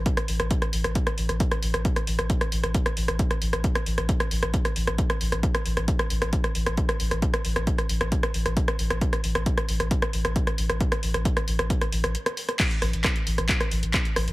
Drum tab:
CC |----------------|----------------|----------------|----------------|
HH |xxoxxxoxxxoxxxox|xxoxxxoxxxoxxxox|xxoxxxoxxxoxxxox|xxoxxxoxxxoxxxox|
CP |----------------|----------------|----------------|----------------|
SD |-r-r-r-r-r-r-r-r|-r-r-r-r-r-r-r-r|-r-r-r-r-r-r-r-r|-r-r-r-r-r-r-r-r|
BD |o---o---o---o---|o---o---o---o---|o---o---o---o---|o---o---o---o---|

CC |----------------|----------------|----------------|x---------------|
HH |xxoxxxoxxxoxxxox|xxoxxxoxxxoxxxox|xxoxxxoxxxoxxxox|xxoxxxoxxxoxxxox|
CP |----------------|----------------|----------------|x---x---x---x---|
SD |-r-r-r-r-r-r-r-r|-r-r-r-r-r-r-r-r|-r-r-r-r-r-r-r-r|--r-r--r-r--r-r-|
BD |o---o---o---o---|o---o---o---o---|o---o---o-------|o---o---o---o---|